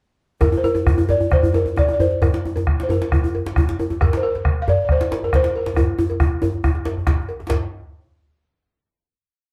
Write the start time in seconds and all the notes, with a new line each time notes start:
0.41 A#4, bombo rim, bombo low, cowbell, djembe tone, djembe bass
0.52 djembe tone
0.57 C5
0.64 A#4, djembe tone
0.75 cowbell, djembe slap, djembe tone
0.87 bombo rim, bombo low, djembe bass
0.98 djembe tone
1.09 D5, cowbell, djembe slap, djembe tone, djembe bass
1.20 djembe tone
1.31 C5, bombo rim, bombo low, djembe tone
1.42 bombo rim, djembe slap, djembe bass
1.53 A#4, cowbell, djembe tone
1.66 djembe tone
1.76 D5, bombo rim, bombo low, djembe slap, djembe tone
1.88 bombo rim, djembe tone
1.93 D5
2.00 C5, cowbell, djembe bass
2.11 djembe slap
2.21 bombo rim, bombo low, cowbell, djembe tone, djembe bass
2.34 djembe slap
2.45 djembe tone
2.56 cowbell, djembe slap, djembe tone
2.67 bombo rim, bombo low
2.80 C5, djembe slap
2.89 A#4, cowbell, djembe tone, djembe bass
3.02 djembe slap
3.12 bombo rim, bombo low, djembe tone
3.23 bombo rim, djembe slap, djembe tone
3.35 cowbell, djembe tone
3.46 djembe slap, djembe bass
3.56 bombo rim, bombo low, djembe slap, djembe tone
3.67 bombo rim, djembe slap, djembe tone
3.79 cowbell, djembe tone
3.90 djembe slap, djembe tone
4.01 A#4, bombo rim, bombo low, cowbell, djembe tone, djembe bass
4.13 C5, djembe slap
4.23 A#4
4.35 cowbell, djembe slap, djembe tone
4.45 bombo rim, bombo low
4.62 F5
4.68 D5, cowbell, djembe slap, djembe tone, djembe bass
4.85 D5
4.89 C5, bombo rim, bombo low
5.00 bombo rim, djembe slap
5.11 cowbell, djembe slap, djembe tone
5.23 A#4, djembe bass
5.33 C5, bombo rim, bombo low, djembe slap
5.44 bombo rim, djembe slap, djembe tone
5.56 A#4, cowbell
5.66 djembe slap
5.76 bombo rim, bombo low, cowbell, djembe tone, djembe bass
5.88 bombo rim
5.99 djembe tone
6.10 cowbell, djembe slap, djembe tone
6.20 bombo rim, bombo low, djembe tone
6.42 bombo rim, cowbell, djembe tone, djembe bass
6.53 bombo rim
6.64 bombo rim, bombo low, djembe tone
6.75 djembe slap
6.85 cowbell, djembe slap, djembe tone
6.97 bombo rim, djembe slap, djembe bass
7.07 bombo rim, bombo low, djembe slap
7.19 djembe bass
7.29 cowbell, djembe slap
7.39 bombo rim, djembe slap
7.49 bombo low, cowbell, djembe slap, djembe bass